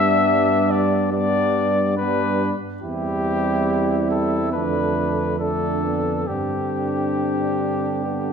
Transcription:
Already playing: tuba G2, trombone G3, french horn B3, flugelhorn D4, trumpet E5
0.71 trumpet D5
1.12 trombone G3, french horn B3, flugelhorn D4, trumpet D5
1.97 trombone G3, french horn B3, flugelhorn D4, trumpet B4
2.82 tuba E2, trombone G3, french horn C4, flugelhorn E4, trumpet G4
4.11 trumpet A4
4.53 tuba F2, trombone D3, french horn A3, flugelhorn D4, trumpet B4
5.39 trombone D3, french horn A3, flugelhorn D4, trumpet A4
5.84 french horn B3
6.27 tuba G2, trombone D3, french horn C4, flugelhorn D4, trumpet G4
8.04 trombone D3, french horn B3, flugelhorn D4

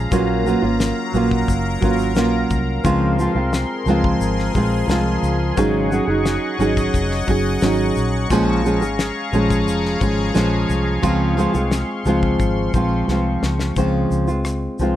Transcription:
Already playing: nylon-string guitar F3 G#3 C#4 G#4, analog synth pad F5
0.11 fingered electric bass A#1, nylon-string guitar A#2 F#3 A#3 C#4 F4, analog synth pad F#3 A#4 A#5, kick, shaker
0.46 nylon-string guitar F#3 A#3 C#4 F4, shaker
0.62 fingered electric bass G#1, nylon-string guitar A#3 C#4 F4
0.80 snare, shaker
1.13 fingered electric bass A#1, nylon-string guitar F#3 A#3 C#4 F4, shaker
1.31 kick
1.48 fingered electric bass F#1, kick, shaker
1.81 fingered electric bass G#1, nylon-string guitar F#3 A#3 C#4 F4, kick, shaker
1.99 shaker
2.15 fingered electric bass A#1, nylon-string guitar F#3 A#3 C#4 F4, snare, shaker
2.50 fingered electric bass C2, kick, shaker
2.84 fingered electric bass C#2, nylon-string guitar C#3 F3 G#3 C4 F4, analog synth pad G#4 C6, kick, shaker
3.19 nylon-string guitar F3 G#3 C4 F4, shaker
3.35 fingered electric bass C2, nylon-string guitar G#3 C4 F4
3.53 snare, shaker
3.86 fingered electric bass C#2, nylon-string guitar F3 G#3 C4, shaker
3.90 nylon-string guitar F4
4.04 kick
4.20 fingered electric bass G#1, shaker
4.39 snare
4.54 fingered electric bass A#1, nylon-string guitar F3 G#3 C4 F4, kick, shaker
4.88 fingered electric bass C2, nylon-string guitar F3 G#3 C4 F4, snare, shaker
5.22 fingered electric bass C#2, shaker
5.57 fingered electric bass G#1, nylon-string guitar G#2 C#3 F#3 C#4 D#4 G#4, analog synth pad D#5 F#5 C#6, kick, shaker
5.91 nylon-string guitar F#3 C#4 D#4 G#4, shaker
6.07 fingered electric bass F#1, nylon-string guitar F#3 C#4 D#4 G#4
6.26 snare, shaker
6.58 fingered electric bass G#1, nylon-string guitar F#3 C#4 D#4 G#4, shaker
6.77 kick, shaker
6.94 fingered electric bass F1, kick, shaker
7.12 snare
7.27 fingered electric bass F#1, nylon-string guitar F#3 C#4 D#4 G#4, kick, shaker
7.61 fingered electric bass G#1, nylon-string guitar F#3 C#4 D#4, snare, shaker
7.66 nylon-string guitar G#4
7.96 fingered electric bass A#1, shaker
8.30 fingered electric bass A#1, nylon-string guitar A#2 F3 G#3 C#4 G#4, analog synth pad G#4 F5 A#5, kick, shaker
8.64 nylon-string guitar F3 G#3 C#4 G#4, shaker
8.82 fingered electric bass G#1, nylon-string guitar G#3 C#4 G#4, shaker
8.99 snare, shaker
9.33 fingered electric bass A#1, nylon-string guitar F3 G#3 C#4 G#4, shaker
9.50 kick, shaker
9.67 fingered electric bass F1, shaker
9.85 snare
10.00 fingered electric bass G#1, nylon-string guitar F3 G#3 C#4 G#4, kick, shaker
10.34 fingered electric bass A#1, nylon-string guitar F3 G#3 C#4 G#4, snare, shaker
10.69 fingered electric bass C2, shaker
11.02 fingered electric bass C#2, nylon-string guitar C#3 F3 G#3 C4 F4, analog synth pad C6, kick, shaker
11.37 nylon-string guitar F3 G#3 C4 F4, shaker
11.54 fingered electric bass C2, nylon-string guitar G#3 C4 F4, shaker
11.71 snare, shaker
12.05 fingered electric bass C#2, nylon-string guitar F3 G#3 C4 F4, shaker
12.23 kick
12.39 fingered electric bass G#1, kick, shaker
12.74 fingered electric bass A#1, nylon-string guitar F3 G#3 C4 F4, kick, shaker
13.08 fingered electric bass C2, nylon-string guitar F3 G#3 C4, snare
13.12 nylon-string guitar F4
13.42 fingered electric bass C#2, snare
13.59 snare
13.76 fingered electric bass C#2, nylon-string guitar C#3 F3 G#3 C4 F4, kick, shaker
14.11 fingered electric bass C#2, shaker
14.28 nylon-string guitar G#3 C4 F4, shaker
14.45 cross-stick, shaker
14.79 fingered electric bass C2, nylon-string guitar F3 G#3 C4 F4, shaker

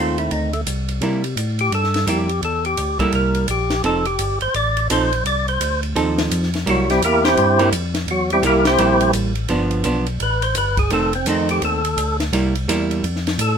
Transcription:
Already playing: tonewheel organ D#2, hollow-body jazz guitar D#3 A3 C4
0.00 tonewheel organ F4
0.18 tonewheel organ E4, ride
0.31 tonewheel organ D2 D#4, ride
0.53 tonewheel organ A3, ride
0.67 tonewheel organ C2, hi-hat pedal, ride
0.89 ride
1.01 tonewheel organ C3, hollow-body jazz guitar G3 A#3 E4, ride
1.24 ride
1.36 tonewheel organ A2, hi-hat pedal, ride
1.59 tonewheel organ G4, ride
1.71 tonewheel organ G2 A4, ride
1.84 snare
1.94 snare, ride
2.07 tonewheel organ F2 G4, hollow-body jazz guitar G3 A#3 E4, hi-hat pedal, ride
2.29 ride
2.42 tonewheel organ E2 A4, ride
2.65 tonewheel organ G4, ride
2.77 tonewheel organ D2, hi-hat pedal, ride
2.99 tonewheel organ D2 A4, hollow-body jazz guitar G3 A#3 E4, kick, ride
3.13 tonewheel organ C2 A#4, ride
3.35 ride
3.48 tonewheel organ A#1 G4, hi-hat pedal, ride
3.70 snare, ride
3.83 tonewheel organ F1 A4, hollow-body jazz guitar F3 C4 D#4 A4, ride
4.05 tonewheel organ G4, ride
4.19 tonewheel organ G1, hi-hat pedal, ride
4.41 tonewheel organ G1 C5, ride
4.54 tonewheel organ A1 D5, ride
4.77 ride
4.90 tonewheel organ A#1 C5, hollow-body jazz guitar F3 C4 D#4 A4, hi-hat pedal, ride
5.13 ride
5.25 tonewheel organ C2 D5, ride
5.48 tonewheel organ C5, ride
5.60 tonewheel organ D2, hi-hat pedal, ride
5.83 ride
5.96 tonewheel organ D#2, hollow-body jazz guitar F3 C4 D#4 A4, ride
6.18 snare, ride
6.31 tonewheel organ F2, hi-hat pedal, ride
6.43 snare
6.54 snare, ride
6.66 tonewheel organ C2 F#3 F#4, hollow-body jazz guitar G3 A#3 E4, ride
6.90 tonewheel organ G3 C4 E4 G4, snare, ride
7.02 tonewheel organ E2 A#3 E4 G4 A#4, hi-hat pedal, ride
7.25 tonewheel organ C4 E4 G4 C5, snare, ride
7.37 tonewheel organ G2, ride
7.59 hollow-body jazz guitar G3 A#3 E4, ride
7.72 tonewheel organ F2, hi-hat pedal, ride
7.94 snare, ride
8.07 tonewheel organ E2, ride
8.11 tonewheel organ F#3 F#4
8.30 tonewheel organ G3 C4 E4 G4, ride
8.42 tonewheel organ C2 A#4, hollow-body jazz guitar G3 A#3 E4, hi-hat pedal, ride
8.46 tonewheel organ A#3 E4 G4
8.65 tonewheel organ C4 E4 G4 C5, snare, ride
8.78 tonewheel organ A#1, hollow-body jazz guitar G3 A#3 E4, ride
9.01 ride
9.13 tonewheel organ A1, hi-hat pedal, ride
9.35 ride
9.48 tonewheel organ G1, hollow-body jazz guitar F3 B3 D4, ride
9.71 ride
9.84 tonewheel organ B1, hollow-body jazz guitar F3 B3 D4, hi-hat pedal, ride
10.06 ride
10.20 tonewheel organ A1 B4, ride
10.42 tonewheel organ C5, ride
10.55 tonewheel organ G1 B4, hi-hat pedal, ride
10.77 tonewheel organ G#4, kick, ride
10.90 tonewheel organ F1 A4, hollow-body jazz guitar D#3 A3 C4, ride
11.13 tonewheel organ C4, ride
11.25 tonewheel organ F2, hollow-body jazz guitar D#3 A3 C4, hi-hat pedal, ride
11.29 tonewheel organ D#4
11.49 tonewheel organ G4, ride
11.61 tonewheel organ D#2 A4, ride
11.85 ride
11.97 tonewheel organ D2, hi-hat pedal, ride
12.20 snare, ride
12.32 tonewheel organ C2, hollow-body jazz guitar G3 A#3 E4, ride
12.55 ride
12.68 tonewheel organ E2, hollow-body jazz guitar G3 A#3 E4, hi-hat pedal, ride
12.91 ride
13.03 tonewheel organ F2, ride
13.16 snare
13.27 snare, ride
13.38 tonewheel organ A2 A4, hi-hat pedal, ride

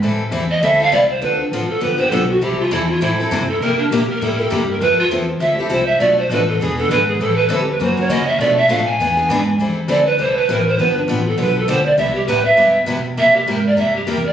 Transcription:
0.02 upright bass A2, steel-string acoustic guitar E3 G3 C4 E4 A4
0.31 upright bass E2, steel-string acoustic guitar E3 G3 C4 E4 A4
0.51 pan flute D#5
0.61 upright bass D2, steel-string acoustic guitar E3 G3 C4 E4 A4, pan flute E5
0.80 steel-string acoustic guitar C4 E4 A4, pan flute F5
0.92 upright bass C2, steel-string acoustic guitar E3 G3 C4 E4 A4, pan flute D5
1.09 pan flute C5
1.22 upright bass D2, steel-string acoustic guitar D3 F3 C4 D4 A4, pan flute B4
1.40 pan flute D4
1.51 upright bass A1, steel-string acoustic guitar D3 F3 C4 D4 A4, pan flute F4
1.69 pan flute A4, muted upright bass stroke
1.81 upright bass G1, steel-string acoustic guitar D3 F3 B3 D4 G4, pan flute B4
1.98 steel-string acoustic guitar B3 D4 G4, pan flute C5
2.11 upright bass B1, steel-string acoustic guitar D3 F3 B3 D4 G4, pan flute A4
2.29 pan flute F#4
2.41 upright bass C2, steel-string acoustic guitar C3 E3 G3 C4 E4 A4, pan flute G4
2.60 pan flute F4
2.71 upright bass E2, steel-string acoustic guitar C3 E3 G3 C4 E4 A4, pan flute E4
2.89 pan flute F4
3.01 upright bass A2, steel-string acoustic guitar C3 E3 G3 C4 E4 A4, pan flute E4
3.20 steel-string acoustic guitar G3 C4 E4 A4
3.31 upright bass G2, steel-string acoustic guitar C3 E3 G3 C4 E4 A4
3.48 pan flute A4, muted upright bass stroke
3.60 upright bass C3, steel-string acoustic guitar C3 G3 A#3 E4 G4, pan flute A#4
3.79 pan flute D4
3.90 upright bass A#2, steel-string acoustic guitar C3 G3 A#3 E4 G4, pan flute G4
4.09 pan flute A#4, muted upright bass stroke
4.21 upright bass A2, steel-string acoustic guitar C3 G3 A#3 E4 G4, pan flute A4
4.33 pan flute A#4
4.39 steel-string acoustic guitar A#3 E4 G4, pan flute A4
4.50 upright bass G2, steel-string acoustic guitar C3 G3 A#3 E4 G4, pan flute G4
4.70 pan flute A#4
4.81 upright bass F2, steel-string acoustic guitar F3 C4 E4 A4, pan flute B4
4.98 pan flute F4, muted upright bass stroke
5.11 upright bass E2, steel-string acoustic guitar F3 C4 E4 A4
5.40 upright bass D2, steel-string acoustic guitar F3 C4 E4 A4, pan flute E5
5.57 steel-string acoustic guitar C4 E4 A4, pan flute G4, muted upright bass stroke
5.69 upright bass C2, steel-string acoustic guitar F3 C4 E4 A4, pan flute C5
5.86 pan flute E5
6.00 upright bass B1, steel-string acoustic guitar B2 F3 A3 D4 A4, pan flute D5
6.19 pan flute C5
6.29 upright bass A1, steel-string acoustic guitar B2 F3 A3 D4 A4, pan flute B4
6.48 pan flute A4
6.60 upright bass E1, steel-string acoustic guitar E3 B3 D4 G#4, pan flute G#4
6.78 steel-string acoustic guitar B3 D4 G#4, pan flute A4
6.89 upright bass G#1, steel-string acoustic guitar E3 B3 D4 G#4, pan flute B4
7.08 pan flute G#4
7.19 upright bass A1, steel-string acoustic guitar E3 G3 C4 E4 A4, pan flute A4
7.36 pan flute B4
7.49 upright bass D2, steel-string acoustic guitar E3 G3 C4 E4 A4, pan flute A4
7.59 pan flute G4
7.71 pan flute B4
7.79 upright bass F#2, steel-string acoustic guitar C#3 E3 A#3 C#4 F#4, pan flute C5
7.97 steel-string acoustic guitar A#3 C#4 F#4, pan flute C#5
8.09 upright bass C#3, steel-string acoustic guitar C#3 E3 A#3 C#4 F#4, pan flute D#5
8.27 pan flute E5
8.39 upright bass B2, steel-string acoustic guitar B2 F3 A3 D4 A4, pan flute D5
8.57 pan flute E5
8.68 upright bass A2, steel-string acoustic guitar B2 F3 A3 D4 A4, pan flute F5
8.86 pan flute G#5
8.98 upright bass E2, steel-string acoustic guitar E3 B3 D4 G#4
9.17 steel-string acoustic guitar B3 D4 G#4
9.29 upright bass G#2, steel-string acoustic guitar E3 B3 D4 G#4
9.58 upright bass E2, steel-string acoustic guitar E3 G3 C4 E4 A4
9.88 upright bass D2, steel-string acoustic guitar E3 G3 C4 E4 A4, pan flute D5
10.06 pan flute B4
10.18 upright bass C2, steel-string acoustic guitar E3 G3 C4 E4 A4, pan flute C5
10.37 pan flute B4
10.49 upright bass A1, steel-string acoustic guitar E3 G3 C4 E4 A4, pan flute A#4
10.68 pan flute C5
10.78 upright bass G1, steel-string acoustic guitar D3 F3 B3 D4 G4, pan flute B4
10.97 pan flute D4
11.08 upright bass A1, steel-string acoustic guitar D3 F3 B3 D4 G4, pan flute F4
11.27 pan flute A4
11.37 upright bass B1, steel-string acoustic guitar D3 F3 B3 D4 G4, pan flute B4
11.57 pan flute A4
11.68 upright bass D2, steel-string acoustic guitar D3 F3 B3 D4 G4, pan flute C5
11.85 pan flute D5
11.98 upright bass C2, steel-string acoustic guitar C3 G3 B3 E4 G4, pan flute E5
12.15 pan flute G4
12.27 upright bass A2, steel-string acoustic guitar C3 G3 B3 E4 G4, pan flute B4
12.45 pan flute E5
12.57 upright bass G2, steel-string acoustic guitar C3 G3 B3 E4 G4
12.86 upright bass B2, steel-string acoustic guitar C3 G3 B3 E4 G4
13.17 upright bass C3, steel-string acoustic guitar C3 G3 A#3 E4 G4, pan flute E5
13.36 pan flute G4
13.46 upright bass G#2, steel-string acoustic guitar C3 G3 A#3 E4 G4, pan flute A#4
13.66 pan flute D5
13.77 upright bass G2, steel-string acoustic guitar C3 G3 A#3 E4 G4, pan flute E5
13.96 pan flute G4
14.07 upright bass E2, steel-string acoustic guitar C3 G3 A#3 E4 G4, pan flute A#4
14.26 pan flute D5

